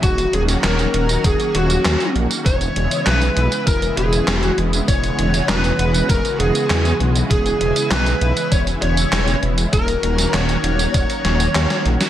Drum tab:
HH |xxxxxxxxxxxxxxxx|xxxxxxxxxxxxxxxx|xxxxxxxxxxxxxxxx|xxxxxxxxxxxxxxxx|
TB |xx-xxx-xxx-xxx-x|xx-xxx-xxx-xxx-x|xx-xxx-xxx-xxx-x|xx-xxx-xxx-xxx-x|
CP |----x-------x---|----x-------x---|----x-------x---|----x-------x---|
SD |---oo-------o---|----o-------o---|---oo-------o---|----o-------o---|
BD |o-------o-------|o-------o-------|o-------o-------|o-------o-------|

HH |xxxxxxxxxxxxxxxx|
TB |xx-xxx-xxx-xxx-x|
CP |----x-------x---|
SD |---oo-----o-oo-o|
BD |o-------o-------|